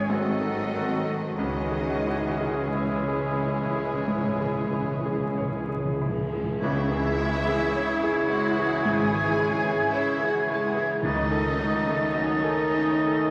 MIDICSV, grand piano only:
0, 0, Header, 1, 2, 480
1, 0, Start_track
1, 0, Key_signature, 4, "minor"
1, 0, Tempo, 1284797
1, 523, Time_signature, 4, 2, 24, 8
1, 524, Tempo, 1339286
1, 1484, Tempo, 1298701
1, 1964, Tempo, 1234568
1, 2444, Tempo, 1129944
1, 2924, Tempo, 1094891
1, 4844, Tempo, 1226994
1, 5306, End_track
2, 0, Start_track
2, 0, Title_t, "Grand piano"
2, 0, Program_c, 0, 0
2, 0, Control_c, 0, 64, 127
2, 0, Note_on_c, 0, 44, 79
2, 0, Note_on_c, 0, 64, 60
2, 0, Note_on_c, 0, 73, 58
2, 37, Note_off_c, 0, 44, 0
2, 37, Note_on_c, 0, 44, 73
2, 42, Note_off_c, 0, 73, 0
2, 49, Control_c, 0, 64, 0
2, 51, Note_off_c, 0, 64, 0
2, 128, Control_c, 0, 64, 127
2, 150, Note_on_c, 0, 69, 53
2, 274, Note_on_c, 0, 66, 56
2, 346, Note_off_c, 0, 69, 0
2, 395, Note_on_c, 0, 69, 47
2, 472, Note_off_c, 0, 66, 0
2, 506, Note_off_c, 0, 44, 0
2, 517, Note_on_c, 0, 37, 68
2, 522, Note_off_c, 0, 69, 0
2, 531, Control_c, 0, 64, 0
2, 616, Control_c, 0, 64, 127
2, 635, Note_on_c, 0, 68, 53
2, 763, Note_on_c, 0, 64, 52
2, 832, Note_off_c, 0, 68, 0
2, 883, Note_on_c, 0, 68, 51
2, 956, Note_off_c, 0, 64, 0
2, 1002, Note_on_c, 0, 73, 48
2, 1076, Note_off_c, 0, 68, 0
2, 1125, Note_on_c, 0, 68, 50
2, 1196, Note_off_c, 0, 73, 0
2, 1243, Note_on_c, 0, 64, 48
2, 1317, Note_off_c, 0, 68, 0
2, 1366, Note_on_c, 0, 68, 49
2, 1436, Note_off_c, 0, 64, 0
2, 1466, Note_off_c, 0, 37, 0
2, 1482, Note_on_c, 0, 44, 54
2, 1558, Note_off_c, 0, 68, 0
2, 1604, Note_on_c, 0, 68, 52
2, 1678, Note_off_c, 0, 44, 0
2, 1726, Note_on_c, 0, 64, 47
2, 1798, Note_off_c, 0, 68, 0
2, 1844, Note_on_c, 0, 68, 53
2, 1916, Note_off_c, 0, 64, 0
2, 1962, Note_on_c, 0, 73, 55
2, 2036, Note_off_c, 0, 68, 0
2, 2084, Note_on_c, 0, 68, 51
2, 2159, Note_off_c, 0, 73, 0
2, 2210, Note_on_c, 0, 64, 52
2, 2281, Note_off_c, 0, 68, 0
2, 2332, Note_on_c, 0, 68, 47
2, 2399, Note_off_c, 0, 64, 0
2, 2445, Note_off_c, 0, 68, 0
2, 2451, Control_c, 0, 64, 0
2, 2452, Note_on_c, 0, 37, 82
2, 2527, Control_c, 0, 64, 127
2, 2572, Note_on_c, 0, 68, 68
2, 2695, Note_on_c, 0, 64, 73
2, 2761, Note_off_c, 0, 68, 0
2, 2813, Note_on_c, 0, 68, 65
2, 2881, Note_off_c, 0, 64, 0
2, 2928, Note_on_c, 0, 73, 69
2, 3000, Note_off_c, 0, 68, 0
2, 3051, Note_on_c, 0, 68, 68
2, 3119, Note_off_c, 0, 73, 0
2, 3179, Note_on_c, 0, 64, 61
2, 3240, Note_off_c, 0, 68, 0
2, 3296, Note_on_c, 0, 68, 60
2, 3363, Note_off_c, 0, 64, 0
2, 3390, Note_off_c, 0, 37, 0
2, 3409, Note_on_c, 0, 44, 71
2, 3479, Note_off_c, 0, 68, 0
2, 3535, Note_on_c, 0, 68, 63
2, 3595, Note_off_c, 0, 44, 0
2, 3650, Note_on_c, 0, 64, 66
2, 3718, Note_off_c, 0, 68, 0
2, 3776, Note_on_c, 0, 68, 61
2, 3836, Note_off_c, 0, 64, 0
2, 3888, Note_on_c, 0, 73, 71
2, 3960, Note_off_c, 0, 68, 0
2, 4014, Note_on_c, 0, 68, 60
2, 4078, Note_off_c, 0, 73, 0
2, 4133, Note_on_c, 0, 64, 64
2, 4202, Note_off_c, 0, 68, 0
2, 4250, Note_on_c, 0, 68, 56
2, 4321, Note_off_c, 0, 64, 0
2, 4367, Note_off_c, 0, 68, 0
2, 4371, Control_c, 0, 64, 0
2, 4371, Note_on_c, 0, 37, 75
2, 4449, Control_c, 0, 64, 127
2, 4487, Note_on_c, 0, 69, 68
2, 4607, Note_on_c, 0, 63, 63
2, 4674, Note_off_c, 0, 69, 0
2, 4729, Note_on_c, 0, 69, 61
2, 4796, Note_off_c, 0, 63, 0
2, 4849, Note_on_c, 0, 75, 62
2, 4916, Note_off_c, 0, 69, 0
2, 4968, Note_on_c, 0, 69, 62
2, 5034, Note_off_c, 0, 75, 0
2, 5094, Note_on_c, 0, 63, 55
2, 5160, Note_off_c, 0, 69, 0
2, 5214, Note_on_c, 0, 69, 65
2, 5282, Note_off_c, 0, 63, 0
2, 5306, Note_off_c, 0, 37, 0
2, 5306, Note_off_c, 0, 69, 0
2, 5306, End_track
0, 0, End_of_file